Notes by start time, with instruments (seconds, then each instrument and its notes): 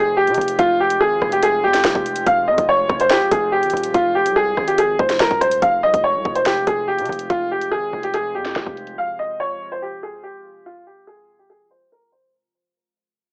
Already playing: 808-style bass F1, ambient pad C3 F3 G#3 F4, upright piano G#4
0.17 upright piano G4
0.27 808-style bass C3, closed hi-hat
0.34 808-style bass F1, closed hi-hat
0.41 closed hi-hat
0.48 closed hi-hat
0.59 808-style bass F1, upright piano F4, kick, closed hi-hat
0.80 upright piano G4
0.90 closed hi-hat
1.01 808-style bass G#1, upright piano G#4
1.22 808-style bass F1, cross-stick
1.32 upright piano G4, closed hi-hat
1.43 upright piano G#4, closed hi-hat
1.64 808-style bass F2, upright piano G4
1.74 snare, closed hi-hat
1.84 808-style bass F1, snare
1.95 808-style bass F1, kick
2.06 closed hi-hat
2.16 closed hi-hat
2.27 808-style bass F1, upright piano F5, kick, closed hi-hat
2.47 808-style bass F2, upright piano D#5
2.58 808-style bass F1, kick, closed hi-hat
2.69 upright piano C#5
2.89 808-style bass F1, kick, cross-stick
3.00 upright piano C5, closed hi-hat
3.10 upright piano G4, snare
3.31 808-style bass F1, upright piano G#4, kick, closed hi-hat
3.52 upright piano G4
3.63 808-style bass G#1, closed hi-hat
3.70 808-style bass D#1, closed hi-hat
3.77 closed hi-hat
3.84 closed hi-hat
3.94 808-style bass F1, upright piano F4, kick, closed hi-hat
4.15 upright piano G4
4.26 808-style bass C2, closed hi-hat
4.36 upright piano G#4
4.57 808-style bass G#1, cross-stick
4.68 upright piano G4, closed hi-hat
4.78 upright piano G#4, closed hi-hat
4.99 808-style bass F1, upright piano C5, kick
5.09 snare, closed hi-hat
5.20 808-style bass F1, upright piano A#4, snare
5.31 808-style bass D#1, kick
5.41 upright piano C5, cross-stick, closed hi-hat
5.51 closed hi-hat
5.62 808-style bass F1, ambient pad C3 F3 G#3 F4, upright piano F5, kick, closed hi-hat
5.83 808-style bass C2, upright piano D#5
5.94 808-style bass F1, kick, closed hi-hat
6.04 upright piano C#5
6.15 808-style bass C2
6.25 808-style bass F1, kick
6.35 upright piano C5, closed hi-hat
6.46 upright piano G4, snare
6.67 808-style bass F1, upright piano G#4, kick, closed hi-hat
6.88 upright piano G4
6.99 808-style bass C3, closed hi-hat
7.06 808-style bass F1, closed hi-hat
7.12 closed hi-hat
7.19 closed hi-hat
7.30 808-style bass F1, upright piano F4, kick, closed hi-hat
7.51 upright piano G4
7.61 closed hi-hat
7.72 808-style bass G#1, upright piano G#4
7.93 808-style bass F1
8.03 upright piano G4, closed hi-hat
8.14 upright piano G#4, closed hi-hat
8.35 808-style bass F2, upright piano G4
8.45 snare, closed hi-hat
8.56 808-style bass F1, snare
8.66 808-style bass F1, kick
8.77 closed hi-hat
8.87 closed hi-hat
8.98 ambient pad F4, upright piano F5
9.19 upright piano D#5
9.40 upright piano C#5
9.72 upright piano C5
9.82 upright piano G4
10.03 upright piano G#4
10.23 upright piano G4
10.66 upright piano F4
10.87 upright piano G4
11.07 upright piano G#4
11.39 upright piano G4
11.50 upright piano G#4
11.71 upright piano C5
11.92 upright piano A#4
12.12 upright piano C5